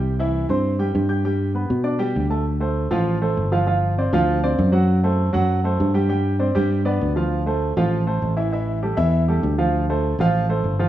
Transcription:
<<
  \new Staff \with { instrumentName = "Grand piano" } { \time 4/4 \key d \dorian \tempo 4 = 198 <g g' g''>8 <e e' e''>4 <c' c'' c'''>4 <g g' g''>4 <g' g'' g'''>8 | <g g' g''>4 <b b' b''>4 <d' d'' d'''>8 <g g' g''>4 <a a' a''>8 | r8 <a a' c''>4 <f f' f''>4 <a a' c''>4 <f f' f''>8 | <f f' f''>4 <c' c'' d''>8 <f f' f''>4 <c' c'' d''>4 <fis fis' fis''>8~ |
<fis fis' fis''>8 <a a' c''>4 <fis fis' fis''>4 <a a' c''>4 <g g' g''>8 | <g g' g''>4 <c' c'' d''>8 <g g' g''>4 <b b' d''>4 <f f' f''>8~ | <f f' f''>8 <a a' c''>4 <f f' f''>4 <a a' c''>4 <e e' e''>8 | <e e' e''>4 <g g' a'>8 <e e' e''>4 <g g' a'>4 <f f' f''>8~ |
<f f' f''>8 <a a' c''>4 <f f' f''>4 <a a' c''>4 <f f' f''>8 | }
  \new Staff \with { instrumentName = "Fingered electric bass" } { \clef bass \time 4/4 \key d \dorian c,4. g,4. g,4~ | g,4. b,4. d,4~ | d,4. a,,4. g,,4~ | g,,4. d,4. fis,4~ |
fis,4. fis,4. g,4~ | g,4. g,4. d,4~ | d,4. a,,4. a,,4~ | a,,4. e,4. d,4~ |
d,4. a,,4. g,,4 | }
>>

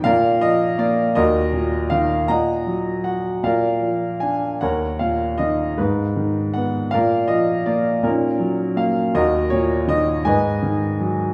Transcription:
<<
  \new Staff \with { instrumentName = "Grand piano" } { \time 6/8 \key ees \minor \tempo 4. = 53 << { f''8 ees''8 d''8 ees''4 f''8 | bes''4 ges''8 f''4 aes''8 | ges''8 f''8 ees''8 ces''8 r8 ges''8 | f''8 ees''8 d''8 bes'8 r8 f''8 |
ees''8 des''8 ees''8 aes''4. | } \\ { <bes' d''>4. <ges' bes'>4. | <ees'' ges''>4. <bes' d''>4. | <bes' des''>4. ees'4. | <bes' d''>4. <des' ees'>4. |
<ges' bes'>4. <ces'' ees''>4. | } >> }
  \new Staff \with { instrumentName = "Grand piano" } { \clef bass \time 6/8 \key ees \minor bes,8 f8 bes8 ees,8 bes,8 ees8 | bes,8 ges8 ges'8 bes,8 f8 d'8 | ees,8 bes,8 ees8 aes,8 ees8 ces'8 | bes,8 f8 bes8 bes,8 ges8 bes8 |
ees,8 bes,8 ees8 aes,8 ees8 ges8 | }
>>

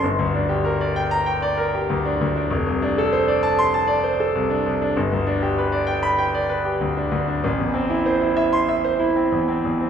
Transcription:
\new Staff \with { instrumentName = "Grand piano" } { \time 4/4 \key g \dorian \tempo 4 = 97 << { r4. r16 bes''8 r4. r16 | \key a \minor r4. r16 c'''8 r4. r16 | r4. r16 b''8 r4. r16 | r4. r16 c'''8 r4. r16 | } \\ { g,,16 d,16 d'16 g'16 bes'16 d''16 g''8 g''16 d''16 bes'16 g'16 d,16 d'16 d,16 d'16 | f,,16 c,16 d'16 a'16 c''16 d''16 a''8 a''16 d''16 c''16 a'16 c,16 d'16 c,16 d'16 | g,,16 d,16 d'16 g'16 b'16 d''16 g''8 g''16 d''16 b'16 g'16 d,16 d'16 d,16 d'16 | a,,16 e,16 c'16 e'16 c''16 e'16 e''8 e''16 c''16 e'16 c'16 e,16 c'16 e,16 c'16 | } >> }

